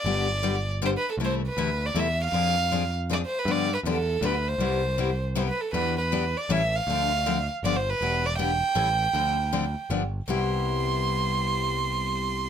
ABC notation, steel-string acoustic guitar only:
X:1
M:3/4
L:1/16
Q:"Swing" 1/4=158
K:C
V:1 name="Steel-string acoustic guitar"
[D,G,B,DG]2 z2 [D,G,B,DG] z3 [D,G,B,DG] z3 | [C,E,A,EA]2 z2 [C,E,A,EA] z3 [C,E,A,EA] z3 | [F,CD_A]2 z2 [F,CDA] z3 [F,CDA] z3 | [D,F,B,DG]2 z2 [D,F,B,DG] z3 [D,F,B,DG] z3 |
[C,G,B,EG]2 z2 [C,G,B,EG] z3 [C,G,B,EG] z3 | [E,B,DG]2 z2 [E,B,DG] z3 [E,G,^CEA] z3 | [D,F,CDA]2 z2 [D,F,CDA] z3 [D,F,B,DG] z3 | [E,B,DG]2 z2 [E,B,DG] z3 [E,G,^CEA] z3 |
[D,F,CDA]2 z2 [D,F,CDA] z3 [D,F,B,DG] z3 | [C,G,B,EG]12- | [C,G,B,EG]12 |]